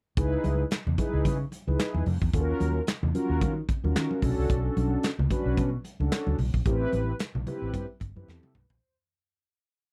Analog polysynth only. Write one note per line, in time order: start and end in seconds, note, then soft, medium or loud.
0.17 0.63 D#4 loud
0.17 0.64 E4 medium
0.17 0.64 G#4 medium
0.17 0.64 B4 loud
0.98 1.37 D#4 medium
0.98 1.37 E4 medium
0.98 1.37 G#4 medium
0.98 1.38 B4 loud
1.67 2.04 D#4 medium
1.67 2.04 E4 medium
1.67 2.04 G#4 medium
1.67 2.04 B4 medium
2.33 2.80 C#4 medium
2.33 2.80 F4 medium
2.33 2.80 F#4 medium
2.33 2.41 A4 medium
2.40 2.83 A#4 loud
3.14 3.54 C#4 medium
3.14 3.54 F4 medium
3.14 3.54 F#4 medium
3.14 3.54 A#4 loud
3.83 4.20 C#4 medium
3.83 4.20 F4 medium
3.83 4.20 F#4 medium
3.83 4.20 A#4 medium
4.22 5.09 C#4 medium
4.22 5.10 D4 medium
4.22 5.10 F#4 medium
4.22 5.10 A4 loud
5.30 5.70 C#4 medium
5.30 5.70 D4 medium
5.30 5.70 F#4 medium
5.30 5.70 B4 loud
6.00 6.36 C#4 medium
6.00 6.36 D4 medium
6.00 6.37 F#4 medium
6.00 6.37 A4 medium
6.65 7.12 C4 loud
6.65 7.12 E4 medium
6.65 7.12 G4 medium
6.65 6.73 A#4 medium
6.73 7.16 B4 loud
7.47 7.86 C4 loud
7.47 7.86 E4 medium
7.47 7.86 G4 medium
7.47 7.86 B4 loud
8.16 8.52 C4 medium
8.16 8.53 E4 medium
8.16 8.53 G4 medium
8.16 8.28 B4 medium
8.28 8.54 A4 medium
8.55 8.69 B4 medium
8.70 8.96 C5 medium